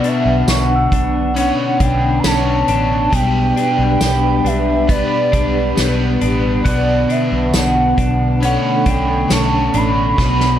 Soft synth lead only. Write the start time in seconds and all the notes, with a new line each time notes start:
0.08 E5
0.52 F#5
1.39 F#5
1.83 G5
2.19 B5
2.26 A5
3.14 G5
4.47 E5
4.91 D5
6.67 D5
7.11 E5
7.56 F#5
8.44 F#5
8.89 G5
9.33 A5
9.77 B5